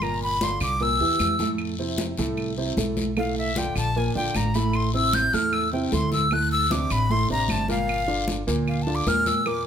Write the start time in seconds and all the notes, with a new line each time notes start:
Already playing: G1
0.02 A#2 A#3 A#4 A#5, high conga, long guiro, claves
0.21 B5, high conga
0.41 D3 D4 F4 C6, high conga, short guiro
0.60 C2 D6, short guiro, claves
0.80 A#2 A#3 A#4 E6, high conga, long guiro
1.00 E2 E3 E4 G4, high conga
1.19 F2, high conga, short guiro, claves
1.39 A2 A3 A4, high conga, short guiro
1.58 high conga, long guiro, claves
1.79 C3 C4 E4, high conga
1.98 high conga, short guiro
2.17 C2 A2 A3 A4, high conga, short guiro
2.37 high conga, long guiro, claves
2.58 C3 C4 E4, high conga
2.77 B1 A2 A3 A4, high conga, short guiro
2.97 high conga, short guiro
3.17 A2 A3 A4 F5, high conga, long guiro, claves
3.37 E5, high conga
3.56 D3 D4 F4 G5, high conga, short guiro
3.76 A#1 A5, short guiro, claves
3.95 A#2 A#3 A#4 G#5, high conga, long guiro
4.15 A#1 D3 D4 F4 G5, high conga
4.35 A1 A#5, high conga, short guiro, claves
4.54 A2 A3 A4 B5, short guiro
4.73 C6, high conga, long guiro, claves
4.94 C3 C4 E4 E6, high conga
5.13 G6, high conga, short guiro
5.33 E2 A2 A3 A4 F6, high conga, short guiro
5.52 E6, high conga, long guiro, claves
5.73 C3 C4 E4 G5, high conga
5.92 D2 A2 A3 A4 C6, high conga, short guiro
6.12 E6, high conga, short guiro
6.31 A2 A3 A4 F#6, high conga, long guiro, claves
6.52 E6, high conga
6.70 C3 C4 D4 D6, high conga, short guiro
6.90 A1 B5, short guiro, claves
7.10 A2 A3 A4 C6, high conga, long guiro
7.29 A1 C3 C4 D4 A#5, high conga
7.48 G1 A5, high conga, short guiro, claves
7.68 A#2 A#3 A#4 F5, high conga, short guiro
7.88 high conga, long guiro, claves
8.08 D3 D4 F4, high conga
8.28 high conga, short guiro
8.47 D2 A#2 A#3 A#4, high conga, short guiro
8.67 F5, high conga, long guiro, claves
8.82 A5
8.87 D3 D4 F4, high conga
8.95 D6
9.07 E2 A#2 A#3 A#4 F6, high conga, short guiro
9.26 E6, high conga, short guiro
9.46 A#2 A#3 A#4 D6, high conga, long guiro, claves